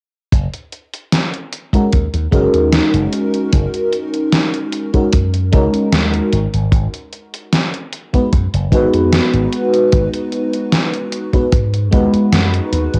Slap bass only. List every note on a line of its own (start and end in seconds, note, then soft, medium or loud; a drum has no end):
0.32 0.46 F#1 medium
1.93 2.06 D#2 medium
2.14 2.26 D#2 medium
2.32 2.46 F#1 medium
2.54 2.79 D#2 medium
2.94 3.06 F#1 medium
3.53 3.66 F#1 medium
5.13 5.55 F#2 medium
5.53 5.67 C#2 loud
5.92 6.19 D#2 medium
6.33 6.46 G#1 medium
6.54 6.66 G#1 medium
6.72 6.86 G#1 medium
8.33 8.46 F#2 medium
8.54 8.66 F#1 medium
8.72 8.86 G#1 medium
8.94 9.19 F2 medium
9.34 9.46 G#1 medium
9.93 10.06 G#1 medium
11.53 11.93 G#2 medium
11.93 12.06 D#2 medium
12.14 muted slap bass stroke soft
12.32 12.59 F#2 medium
12.72 12.86 D#2 medium
12.94 12.99 G#1 medium